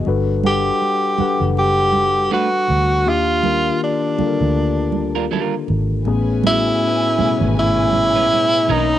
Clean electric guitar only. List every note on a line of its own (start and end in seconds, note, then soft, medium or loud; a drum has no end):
2.31 2.47 A3 medium
2.31 2.48 D4 medium
2.31 2.48 F#4 medium
2.31 2.48 B4 medium
5.15 5.25 G3 medium
5.15 5.25 D4 medium
5.15 5.25 F4 medium
5.15 5.25 A#4 medium
5.31 5.53 G3 medium
5.31 5.54 D4 medium
5.31 5.54 F4 medium
5.31 5.54 A#4 medium
8.16 8.26 G#3 soft
8.16 8.25 C#4 soft
8.16 8.25 E4 medium
8.16 8.25 B4 medium
8.32 muted clean electric guitar stroke soft
8.69 8.85 F#3 medium
8.69 8.85 C#4 medium
8.69 8.85 D#4 medium
8.69 8.86 A#4 medium